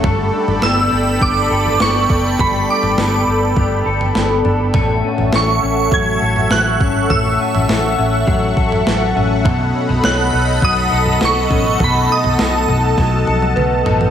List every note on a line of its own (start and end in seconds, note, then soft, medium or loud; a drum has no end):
0.00 0.62 A3 medium
0.00 0.10 C#4 soft
0.00 9.41 A4 medium
0.00 kick loud
0.00 floor tom loud
0.04 0.30 G1 loud
0.04 2.38 G3 medium
0.04 1.50 A4 medium
0.04 4.71 D5 medium
0.04 4.71 G5 medium
0.04 4.71 B5 medium
0.33 0.91 D4 medium
0.48 0.61 G1 medium
0.48 floor tom medium
0.62 0.89 G1 medium
0.62 1.20 B3 medium
0.62 1.24 E6 loud
0.62 snare loud
0.92 1.18 G1 medium
0.92 2.08 D4 medium
1.21 1.47 G1 medium
1.21 1.79 B3 medium
1.21 1.83 D6 medium
1.21 kick medium
1.21 floor tom medium
1.51 1.77 G1 medium
1.51 2.39 A4 medium
1.66 floor tom medium
1.80 2.06 G1 medium
1.80 2.97 B3 medium
1.80 2.42 C#6 medium
1.80 snare loud
2.10 2.36 F#1 medium
2.10 2.67 D4 soft
2.10 kick medium
2.10 floor tom medium
2.39 2.65 G1 medium
2.39 4.74 G3 medium
2.39 3.86 A4 medium
2.39 2.70 B5 medium
2.39 kick loud
2.39 floor tom loud
2.68 3.26 D4 medium
2.68 3.24 D6 medium
2.83 2.96 G1 medium
2.83 floor tom medium
2.97 3.24 G1 loud
2.97 3.56 B3 medium
2.97 snare loud
3.27 3.53 G1 medium
3.27 4.44 D4 soft
3.56 3.83 G1 medium
3.56 4.14 B3 medium
3.56 kick medium
3.56 floor tom medium
3.86 4.12 G1 medium
3.86 4.75 A4 medium
4.01 floor tom medium
4.15 4.41 G1 medium
4.15 4.80 B3 medium
4.15 snare medium
4.45 4.71 G1 medium
4.45 4.80 D4 soft
4.45 floor tom medium
4.74 5.00 A1 loud
4.74 7.09 A2 medium
4.74 6.21 A4 medium
4.74 9.41 E5 medium
4.74 14.10 F#5 medium
4.74 5.63 A5 medium
4.74 9.42 C#6 medium
4.74 kick loud
4.74 floor tom loud
5.04 5.61 C#4 soft
5.18 5.32 A1 medium
5.18 floor tom medium
5.33 5.59 A1 loud
5.33 6.51 A3 medium
5.33 5.95 C#6 medium
5.33 snare medium
5.63 5.89 A1 medium
5.63 6.79 C#4 medium
5.92 6.18 A1 medium
5.92 8.27 F#3 medium
5.92 6.54 G#6 loud
5.92 kick medium
5.92 floor tom medium
6.22 6.48 A1 medium
6.22 7.10 A4 medium
6.36 floor tom medium
6.51 6.77 A1 medium
6.51 7.68 A3 soft
6.51 7.12 F#6 medium
6.51 snare loud
6.80 7.06 G#1 medium
6.80 7.38 C#4 soft
6.80 kick medium
6.80 floor tom medium
7.10 7.36 A1 medium
7.10 9.45 A2 medium
7.10 8.56 A4 medium
7.10 8.24 E6 medium
7.10 kick loud
7.10 floor tom loud
7.40 7.97 C#4 medium
7.55 7.67 A1 medium
7.55 floor tom medium
7.69 7.95 A1 loud
7.69 8.86 A3 medium
7.69 snare loud
7.98 8.24 A1 medium
7.98 9.14 C#4 soft
8.27 8.53 A1 medium
8.27 10.62 F#3 medium
8.27 9.15 F#5 medium
8.27 kick medium
8.27 floor tom medium
8.57 8.83 A1 medium
8.57 9.45 A4 medium
8.57 kick medium
8.72 floor tom medium
8.86 9.13 A1 medium
8.86 9.92 A3 medium
8.86 snare loud
9.16 9.45 A1 medium
9.16 9.51 C#4 soft
9.16 floor tom medium
9.44 9.71 B1 loud
9.44 11.78 B2 medium
9.44 10.91 A4 medium
9.44 14.10 A4 medium
9.44 14.10 D#5 medium
9.44 11.78 B5 medium
9.44 kick loud
9.44 floor tom loud
9.75 9.89 C#4 soft
9.89 10.03 B1 medium
9.89 10.32 D#4 soft
9.89 floor tom medium
10.04 10.30 B1 medium
10.04 11.21 A3 medium
10.04 10.92 C#5 soft
10.04 10.65 F#6 medium
10.04 snare loud
10.33 10.59 B1 medium
10.33 11.50 D#4 medium
10.62 10.88 B1 medium
10.62 12.97 F#3 medium
10.62 11.24 D#6 medium
10.62 kick medium
10.62 floor tom medium
10.92 11.18 B1 medium
10.92 11.80 A4 medium
11.06 floor tom medium
11.21 11.48 B1 medium
11.21 12.38 A3 medium
11.21 snare medium
11.25 11.84 C#6 medium
11.50 11.77 A1 medium
11.50 11.65 C#4 soft
11.50 kick medium
11.50 floor tom medium
11.65 12.08 D#4 soft
11.79 12.06 B1 medium
11.79 14.10 B2 medium
11.79 13.27 A4 medium
11.79 14.10 A5 medium
11.79 kick loud
11.79 floor tom loud
11.84 12.12 B5 medium
12.09 12.68 D#4 medium
12.09 12.66 D#6 medium
12.24 12.38 B1 medium
12.24 floor tom medium
12.38 12.65 B1 medium
12.38 13.56 A3 medium
12.38 13.27 D#5 soft
12.38 snare loud
12.68 12.95 B1 medium
12.68 13.86 D#4 soft
12.68 floor tom medium
12.97 13.24 B1 medium
12.97 14.10 F#3 medium
12.97 kick medium
12.97 snare soft
13.27 13.53 B1 medium
13.27 14.10 A4 medium
13.27 high tom medium
13.42 high tom medium
13.56 13.83 B1 medium
13.56 14.10 A3 medium
13.56 14.10 B4 medium
13.56 mid tom medium
13.86 14.10 A1 medium
13.86 14.10 D#4 soft
13.86 floor tom medium
14.01 floor tom medium